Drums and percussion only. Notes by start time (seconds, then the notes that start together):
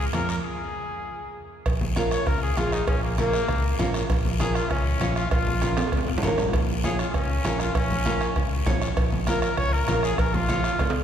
0.13 bombo rim, high conga, high timbale, short guiro
0.29 high timbale, short guiro
1.66 bombo low, bombo rim, cowbell, long guiro
1.81 high conga
1.96 bombo rim, cowbell, high conga, short guiro
2.11 bombo rim, short guiro
2.26 bombo low, bombo rim, cowbell, long guiro
2.57 bombo rim, cowbell, high conga, short guiro
2.72 bombo rim, short guiro
2.87 bombo low, bombo rim, cowbell, long guiro
3.18 bombo rim, cowbell, high conga, short guiro
3.33 bombo rim, short guiro
3.48 bombo low, bombo rim, cowbell, long guiro
3.79 bombo rim, cowbell, high conga, low conga, short guiro
3.94 bombo rim, short guiro
4.10 bombo low, bombo rim, cowbell, long guiro
4.25 high conga
4.40 bombo rim, cowbell, high conga, short guiro
4.55 bombo rim, short guiro
4.71 bombo low, bombo rim, cowbell, long guiro
5.01 bombo rim, cowbell, high conga, short guiro
5.16 bombo rim, short guiro
5.31 bombo low, bombo rim, cowbell, long guiro
5.47 low conga
5.62 bombo rim, cowbell, high conga, short guiro
5.77 bombo rim, high timbale, short guiro
5.88 high timbale
5.92 bombo low, bombo rim, cowbell, long guiro
5.97 high timbale
6.07 high timbale
6.18 low timbale
6.23 bombo rim, cowbell, high conga, low conga, short guiro
6.28 low timbale
6.38 bombo rim, low timbale, short guiro
6.49 low timbale
6.53 bombo low, bombo rim, cowbell, long guiro
6.84 bombo rim, cowbell, high conga, short guiro
6.99 bombo rim, short guiro
7.14 bombo low, bombo rim, cowbell, long guiro
7.45 bombo rim, cowbell, high conga, low timbale, short guiro
7.60 bombo rim, short guiro
7.75 bombo low, bombo rim, cowbell, long guiro
7.91 low conga
8.06 bombo rim, cowbell, high conga, short guiro
8.21 bombo rim, short guiro
8.36 bombo low, bombo rim, cowbell, long guiro
8.66 bombo low, bombo rim, cowbell, high conga, low conga, low timbale, short guiro
8.81 bombo rim, short guiro
8.97 bombo low, bombo rim, cowbell, long guiro
9.12 high conga
9.27 bombo rim, cowbell, high conga, short guiro
9.42 bombo rim, short guiro
9.57 bombo low, bombo rim, cowbell, long guiro
9.88 bombo rim, cowbell, high conga, short guiro
10.03 bombo rim, short guiro
10.18 bombo low, bombo rim, cowbell, long guiro
10.34 high conga, low conga
10.49 bombo rim, cowbell, high conga, short guiro
10.64 bombo rim, short guiro
10.79 bombo low, bombo rim, cowbell, high timbale, long guiro
10.90 high timbale